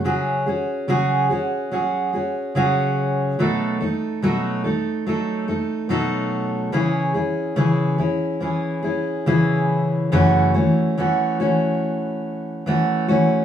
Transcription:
\new Staff \with { instrumentName = "Steel-string acoustic guitar" } { \time 4/4 \key fis \minor \tempo 4 = 72 <cis fis cis' fis' gis'>8 <cis' fis' gis'>8 <cis fis cis' fis' gis'>8 <cis' fis' gis'>8 <fis cis' fis' gis'>8 <cis' fis' gis'>8 <cis fis cis' fis' gis'>4 | <b, fis a dis' a'>8 <a dis' a'>8 <b, fis a dis' a'>8 <a dis' a'>8 <fis a dis' a'>8 <a dis' a'>8 <b, fis a dis' a'>4 | <cis e cis' e' gis'>8 <cis' e' gis'>8 <cis e cis' e' gis'>8 <cis' e' gis'>8 <e cis' e' gis'>8 <cis' e' gis'>8 <cis e cis' e' gis'>4 | <fis, cis e a cis' fis'>8 <e a cis' fis'>8 <e a cis' fis'>8 <e a cis' fis'>4. <e a cis' fis'>8 <e a cis' fis'>8 | }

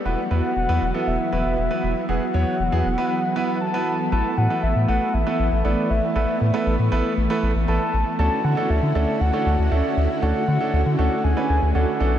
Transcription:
<<
  \new Staff \with { instrumentName = "Soft synth lead" } { \time 4/4 \key a \major \tempo 4 = 118 fis''2 e''4 e''4 | fis''2. a''4 | a''8 fis''8 e''8 fis''8 e''4 d''8 e''8~ | e''2 r4 a''4 |
a''8 fis''8 e''4 fis''4 e''4 | fis''4. fis''8 gis''4 fis''8. r16 | }
  \new Staff \with { instrumentName = "Grand piano" } { \time 4/4 \key a \major <b e' fis' b'>16 r16 <b e' fis' b'>8 r16 <b e' fis' b'>16 r16 <b e' fis' a'>8 r16 <b e' fis' b'>8 r16 <b e' fis' b'>8 r16 | <b e' fis' gis'>16 r16 <b e' fis' cis''>8 r16 <b e' fis' gis'>16 r16 <b e' fis' b'>8 r16 <b e' fis' b'>8 r16 <b e' fis' b'>8 r16 | <a b e' a' b'>8 r16 <a b e' a' b'>8 r16 <a b e' a' b'>8 r16 <a b e' a' b'>8 r16 <a b e' a' b'>8 r8 | <a b e' a' b'>8 r16 <a b e' a' b'>8 r16 <a b e' a' b'>8 r16 <a b e' a' b'>8 r16 <a b e' a' b'>8 r8 |
<a cis' d' fis' a'>8 r16 <a cis' d' fis' a'>8 r16 <a cis' d' fis' a'>8 r16 <a cis' d' fis' a'>8 r16 <a cis' d' fis' a'>8 r8 | <a cis' d' fis' a'>8 r16 <a cis' d' fis' a'>8 r16 <a cis' d' fis' a'>8 r16 <a cis' d' fis' b'>8 r16 <a cis' d' fis' a'>8 <a b d' fis' a'>8 | }
  \new Staff \with { instrumentName = "String machine" } { \time 4/4 \key a \major << { <e fis b>1~ | <e fis b>1 | <e a b>1~ | <e a b>1 |
<cis' e' fis'>1~ | <cis' e' fis'>2.~ <cis' e' fis'>8 b8 | } \\ { r1 | r1 | r1 | r1 |
<d a>1~ | <d a>1 | } >> }
  \new Staff \with { instrumentName = "Analog synth bass" } { \clef bass \time 4/4 \key a \major e,,16 r16 e,16 r16 e,,16 e,16 e,,16 r16 e,,16 r16 e,,16 e,,16 e,,16 r16 e,,16 r16 | e,,16 r16 e,16 r16 e,,16 e,16 e,,16 r2 r16 | a,,16 r16 a,16 r16 a,,16 a,16 a,,16 r16 a,,16 r16 a,,16 a,,16 a,,16 r16 a,,16 r16 | a,,16 r16 a,16 r16 a,,16 a,16 a,,16 r16 a,,16 r16 a,,16 a,,16 a,,16 r16 a,,16 r16 |
d,16 r16 d16 r16 d,16 d16 d,16 r16 d,16 r16 d,16 d,16 d,16 r16 d,16 r16 | d,16 r16 d16 r16 d,16 d16 d,16 r16 d,16 r16 d,16 d,16 d,16 r16 b,,8 | }
>>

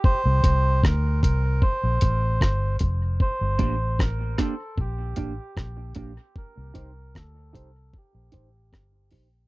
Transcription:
<<
  \new Staff \with { instrumentName = "Melodica" } { \time 4/4 \key c \dorian \tempo 4 = 76 c''4 bes'8 bes'8 c''4. r8 | c''4 bes'8 a'8 g'4. r8 | bes'4 a'4 g'4. r8 | }
  \new Staff \with { instrumentName = "Clean electric guitar" } { \time 4/4 \key c \dorian r1 | r8 <bes d' g'>8 r8 <bes d' g'>8 r8 <bes d' g'>8 r8 <bes d' g'>8 | r8 <ees' g' c''>8 r8 <ees' g' c''>8 r8 <ees' g' c''>8 r8 <ees' g' c''>8 | }
  \new Staff \with { instrumentName = "Fingered electric bass" } { \clef bass \time 4/4 \key c \dorian r16 c,16 c,8 d,8 c,8 r16 bes,,16 a,,8 g,,8 f,,8 | r16 g,,16 a,,4 r8 bes,,8 a,,16 r16 bes,,8 bes,,16 r16 | r16 c,16 c,8 d,8 c,8 r16 bes,,16 a,,8 g,,8 bes,,8 | }
  \new DrumStaff \with { instrumentName = "Drums" } \drummode { \time 4/4 bd8 <hh bd>8 <bd ss>8 <hh bd>8 bd8 <hh bd>8 <bd ss>8 <hh bd>8 | bd8 <hh bd>8 <bd ss>8 <hh bd ss>8 bd8 <hh bd>8 <bd ss>8 <hh bd>8 | bd8 <hh bd>8 <bd ss>8 <hh bd>8 bd8 <hh bd>8 <bd ss>8 <hho bd>8 | }
>>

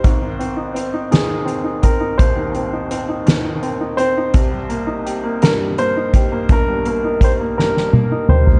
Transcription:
<<
  \new Staff \with { instrumentName = "Grand piano" } { \time 6/8 \key c \minor \tempo 4. = 56 c''4. aes'4 bes'8 | c''4. r4 c''8~ | c''4. bes'8 c''4 | bes'8 bes'8 c''8 bes'4 c''8 | }
  \new Staff \with { instrumentName = "Upright piano" } { \time 6/8 \key c \minor <aes,, aes,>16 ees16 c'16 ees'16 c'16 ees'16 <ees, ees>16 ees16 c'16 ees'16 c'16 ees'16 | <ees,, ees,>16 ees16 c'16 ees'16 c'16 ees'16 <ees, ees>16 ees16 c'16 ees'16 c'16 ees'16 | <c, c>16 g16 bes16 ees'16 g'16 bes16 <g, g>16 g16 bes16 ees'16 g'16 bes16 | <g,, g,>16 g16 bes16 ees'16 g'16 bes16 <g, g>16 g16 bes16 ees'16 g'16 bes16 | }
  \new DrumStaff \with { instrumentName = "Drums" } \drummode { \time 6/8 <hh bd>8 hh8 hh8 <hh sn>8 hh8 <hh bd>8 | <hh bd>8 hh8 hh8 <hh sn>8 hh8 hh8 | <hh bd>8 hh8 hh8 <hh sn>8 hh8 <hh bd>8 | <hh bd>8 hh8 <hh bd>8 sn16 sn16 tommh8 toml16 tomfh16 | }
>>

